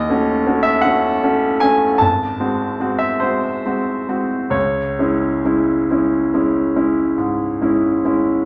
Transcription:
Already playing: D#2 D#5
0.09 A3 C#4 F#4
0.47 A3 C#4 F#4
0.63 E5
0.81 A3 C#4 F#4 F#5
1.23 A3 C#4 F#4
1.60 A3 C#4 F#4 G#5
1.98 G#1 A5
2.40 G#3 C4 F#4
2.80 G#3 C4 F#4
2.99 E5
3.20 G#3 C4 F#4 C5
3.66 G#3 C4 F#4
4.08 G#3 C4 F#4
4.50 C#2 C#5
4.99 G#3 C#4 E4
5.45 G#3 C#4 E4
5.91 G#3 C#4 E4
6.34 G#3 C#4 E4
6.76 G#3 C#4 E4
7.18 G#2
7.61 G#3 C#4 E4
8.05 G#3 C#4 E4

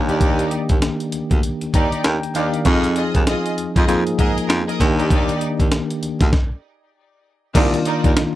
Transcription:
Already playing: D#2 D#3 A#3 D4 G4
0.09 D#4 G4 D5, closed hi-hat
0.20 D#4 G4 D5, kick, closed hi-hat
0.39 closed hi-hat
0.51 closed hi-hat
0.69 D#2, kick, closed hi-hat
0.82 snare, closed hi-hat
1.00 closed hi-hat
1.12 D2, closed hi-hat
1.31 D2, kick, closed hi-hat
1.43 closed hi-hat
1.61 D#2, closed hi-hat
1.73 D#2 D#4 G4 D5 A#5, kick, closed hi-hat
1.92 closed hi-hat
2.04 D#2 G5, snare, closed hi-hat
2.23 closed hi-hat
2.34 D#2 D#3 A#3 D4 D#4 G4 D5 F5, closed hi-hat
2.54 closed hi-hat
2.65 F2 F3 C4 D#4 F4 G#4 D#5, kick, closed hi-hat
2.84 closed hi-hat
2.96 F4 G#4 D#5, closed hi-hat
3.15 D#2, kick, closed hi-hat
3.27 F4 G#4 D#5, snare, closed hi-hat
3.46 closed hi-hat
3.58 F2, closed hi-hat
3.76 F2 F4 G#4 D#5, kick, closed hi-hat
3.88 F2 F3 A#3 D#4 G#4, closed hi-hat
4.06 G#2, closed hi-hat
4.18 G#2 G#4 A#4 D#5, kick, closed hi-hat
4.38 closed hi-hat
4.48 F2, snare, closed hi-hat
4.67 G#4 A#4 D#5, closed hi-hat
4.80 D#2 D#3 A#3 D4 G4, kick, closed hi-hat
4.98 D#4 G4 D5, closed hi-hat
5.09 D#4 G4 D5, kick, closed hi-hat
5.29 closed hi-hat
5.41 closed hi-hat
5.60 D#2, kick, closed hi-hat
5.72 snare, closed hi-hat
5.91 closed hi-hat
6.02 D2, closed hi-hat
6.21 D2, kick, snare, closed hi-hat
6.33 kick, snare
7.55 C2 D#3 A#3 D4 D#4 F4 A#4 D5, kick, closed hi-hat, crash
7.74 closed hi-hat
7.85 D#4 F4 A#4 D5, closed hi-hat
8.04 D#2, kick, closed hi-hat
8.16 F2, snare, closed hi-hat

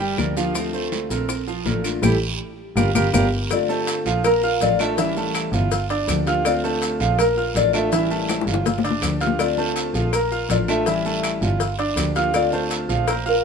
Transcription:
Already playing: G1
0.00 G3 G4 G5, high bongo, maracas
0.18 D2 F3 A#3 D4 G4 A#4 D5, high bongo, low bongo, short guiro, claves, maracas
0.36 F3 A#3 D4 F4 G4 F5, short guiro, maracas
0.55 D3 A3 C4 F4, high bongo, long guiro, claves, maracas
0.73 A3 A4 C5, high bongo, maracas
0.92 D3 A3 C4 F4, high bongo, short guiro, maracas
1.10 A#1 C4 A4 A#4, high bongo, short guiro, maracas
1.29 muted steel-string acoustic guitar stroke, high bongo, long guiro, claves, maracas
1.47 F3 F4 F5, high bongo, maracas
1.65 A1 F3 A3 A#3 D4 F4 A4 A#4, high bongo, low bongo, short guiro, maracas
1.84 A3 D4 F4, short guiro, claves, maracas
2.02 A1 G3 A3 C#4 E4 G4 A4, low bongo, long guiro, claves, maracas
2.76 G1 G3 A#3 D4 F4 G4 A#4, low bongo, long guiro, claves, maracas
2.95 G1 G3 A#3 D4 F4 G4 A#4, low bongo, long guiro, claves, maracas
3.14 G1 G3 A#3 D4 F4 G4 A#4, low bongo, long guiro, claves, maracas
3.50 D3 A3 C4 F4 D5, cowbell, long guiro, claves, maracas
3.69 A3 A4 C5 A5, maracas
3.87 cowbell, short guiro, maracas
4.06 A#1 F3 F4 F5, short guiro, maracas
4.24 A#3 A#4 A#5, muted steel-string acoustic guitar stroke, cowbell, long guiro, claves, maracas
4.43 F4 F5 F6, maracas
4.61 A1 F3 A3 D4 F4 D5, cowbell, short guiro, maracas
4.79 A3 D4 F4 A4 E5 A5, short guiro, claves, maracas
4.97 E3 G3 C#4 E4 E5, cowbell, long guiro, maracas
5.17 A3 A4 A5, maracas
5.34 cowbell, short guiro, claves, maracas
5.53 G1 F4, short guiro, maracas
5.71 muted steel-string acoustic guitar stroke, cowbell, long guiro, maracas
5.90 D4 D5 D6, cowbell, maracas
6.08 D2 F3 A#3 D4 G4, cowbell, short guiro, claves, maracas
6.26 F3 A#3 D4 F4 G4 F5 F6, cowbell, short guiro, maracas
6.44 D3 A3 C4 F4 D5, cowbell, long guiro, claves, maracas
6.64 A3 A4 C5 A5, maracas
6.82 cowbell, short guiro, maracas
7.00 A#1 F3 F4 F5, short guiro, maracas
7.18 A#3 A#4 A#5, muted steel-string acoustic guitar stroke, cowbell, long guiro, claves, maracas
7.37 F4 F5 F6, maracas
7.55 A1 F3 A3 D4 F4 D5, cowbell, short guiro, maracas
7.73 A3 D4 F4 A4 E5 A5, short guiro, claves, maracas
7.91 E3 G3 C#4 E4 E5, cowbell, long guiro, maracas
8.11 A3 A4 A5, maracas
8.29 cowbell, high bongo, short guiro, claves, maracas
8.41 high bongo
8.47 G1 F4, short guiro, maracas
8.54 high bongo
8.65 muted steel-string acoustic guitar stroke, cowbell, low bongo, long guiro, maracas
8.78 low bongo
8.84 D4 D5 D6, cowbell, maracas
8.90 low bongo
9.02 D2 F3 A#3 D4 G4, cowbell, short guiro, claves, maracas
9.21 F3 A#3 D4 F4 G4 F5 F6, cowbell, short guiro, maracas
9.27 low bongo
9.38 D3 A3 C4 F4 D5, cowbell, long guiro, claves, maracas
9.58 A3 A4 C5 A5, maracas
9.76 cowbell, short guiro, maracas
9.94 A#1 F3 F4 F5, short guiro, maracas
10.13 A#3 A#4 A#5, muted steel-string acoustic guitar stroke, cowbell, long guiro, claves, maracas
10.31 F4 F5 F6, maracas
10.49 A1 F3 A3 D4 F4 D5, cowbell, short guiro, maracas
10.68 A3 D4 F4 A4 E5 A5, short guiro, claves, maracas
10.86 E3 G3 C#4 E4 E5, cowbell, long guiro, maracas
11.05 A3 A4 A5, maracas
11.23 cowbell, short guiro, claves, maracas
11.42 G1 F4, short guiro, maracas
11.60 muted steel-string acoustic guitar stroke, cowbell, long guiro, maracas
11.79 D4 D5 D6, cowbell, maracas
11.97 D2 F3 A#3 D4 G4, cowbell, short guiro, claves, maracas
12.15 F3 A#3 D4 F4 G4 F5 F6, cowbell, short guiro, maracas
12.33 D3 A3 C4 F4 D5, cowbell, long guiro, claves, maracas
12.52 A3 A4 C5 A5, maracas
12.71 cowbell, short guiro, maracas
12.89 A#1 F3 F4 F5, short guiro, maracas
13.07 A#3 A#4 C5 A#5, muted steel-string acoustic guitar stroke, cowbell, long guiro, claves, maracas
13.25 F4 A#4 F5 F6, maracas

